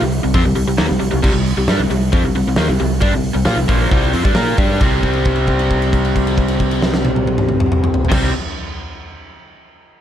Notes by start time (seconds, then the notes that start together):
0.01 C2 C3 G3
0.12 open hi-hat
0.23 C2 C3 G3
0.34 F2 F3 C4, kick, open hi-hat
0.45 C2 C3 G3
0.56 C2 C3 G3, open hi-hat
0.68 C2 C3 G3
0.78 D#2 D#3 A#3, snare, open hi-hat
0.88 C2 C3 G3
1.00 C2 C3 G3, open hi-hat
1.11 C2 C3 G3
1.23 C2 C3 G3, kick, crash
1.33 C2 C3 G3
1.46 open hi-hat
1.57 C2 C3 G3
1.68 G2 G3 D4, snare, open hi-hat
1.78 C2 C3 G3
1.90 C2 C3 G3, open hi-hat
2.12 F2 F3 C4, kick, open hi-hat
2.23 C2 C3 G3
2.34 C2 C3 G3, open hi-hat
2.47 C2 C3 G3
2.56 D#2 D#3 A#3, snare, open hi-hat
2.69 C2 C3 G3
2.79 C2 C3 G3, open hi-hat
3.01 G2 G3 D4, kick, open hi-hat
3.13 C2 C3 G3
3.24 open hi-hat
3.34 C2 C3 G3
3.45 A#2 A#3 F4, snare, open hi-hat
3.56 C2 C3 G3
3.68 A#1 A#2 F3 A#3, kick, open hi-hat
3.91 C2 C3 G3 C4, kick, open hi-hat
4.13 F2 F3 C4, open hi-hat
4.24 G2 G3 D4, kick
4.35 A#2 A#3 F4 A#4, snare, open hi-hat
4.57 G2 G3 D4 G4, kick, open hi-hat
4.80 C2 C3 G3 C4, kick, crash
5.03 kick, crash
5.13 crash
5.25 kick, crash
5.36 crash
5.47 kick, crash
5.59 crash
5.71 kick, crash
5.82 crash
5.93 kick, crash
6.05 crash
6.16 kick, crash
6.27 crash
6.38 kick, crash
6.48 crash
6.60 kick, crash
6.71 crash
6.82 snare
6.94 snare
7.05 high tom
7.16 high tom
7.27 high tom
7.38 mid tom
7.49 mid tom
7.60 mid tom
7.72 mid tom
7.84 mid tom
7.94 floor tom
8.05 floor tom
8.09 C2 C3 G3 C4, kick, snare, crash